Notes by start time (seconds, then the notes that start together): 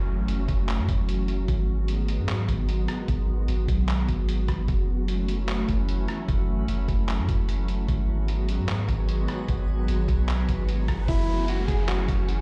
Already playing: F#1 E3 F#3 A3 C#4 F#4, downlifter
0.18 A1
0.28 F#1, closed hi-hat
0.48 F#1, kick, closed hi-hat
0.69 clap
0.78 F#2
0.88 F#1, kick, closed hi-hat
1.09 closed hi-hat
1.28 closed hi-hat
1.48 G#1 D#3 G#3 B3, kick, closed hi-hat
1.88 closed hi-hat
2.08 closed hi-hat
2.18 G#2
2.29 clap
2.48 G#1, kick, closed hi-hat
2.69 closed hi-hat
2.88 cross-stick, closed hi-hat
3.08 G#1, kick, closed hi-hat
3.48 G#1, closed hi-hat
3.68 B1, kick, closed hi-hat
3.89 clap
4.08 G#1, kick, closed hi-hat
4.29 closed hi-hat
4.48 G#1, kick, cross-stick, closed hi-hat
4.68 F#1 E3 A3 C#4 E4 A4 F#5, kick, closed hi-hat
5.08 closed hi-hat
5.28 closed hi-hat
5.49 clap
5.68 F#1, kick, closed hi-hat
5.89 closed hi-hat
6.08 cross-stick, closed hi-hat
6.28 F#1, kick, closed hi-hat
6.58 A1
6.68 F#1, closed hi-hat
6.88 F#1, kick, closed hi-hat
7.09 clap
7.18 F#2
7.29 F#1, kick, closed hi-hat
7.49 closed hi-hat
7.68 closed hi-hat
7.88 G#1 D#3 F#3 G#3 B3 F#4 B4 G#5, kick, closed hi-hat
8.28 closed hi-hat
8.49 closed hi-hat
8.58 G#2
8.69 clap
8.89 G#1, kick, closed hi-hat
9.09 closed hi-hat
9.28 cross-stick, closed hi-hat
9.48 G#1, kick, closed hi-hat, riser
9.88 G#1, closed hi-hat
10.08 B1, kick, closed hi-hat
10.29 clap
10.48 G#1, kick, closed hi-hat
10.69 closed hi-hat
10.88 G#1, kick, cross-stick, closed hi-hat
11.08 F#1 E3 F#3 A3 C#4 E4 F#4 A4 F#5, kick, closed hi-hat, downlifter
11.48 F#4, closed hi-hat
11.68 F#1 G#4, kick, closed hi-hat
11.88 F#4, clap
12.08 F#1, kick, closed hi-hat
12.29 closed hi-hat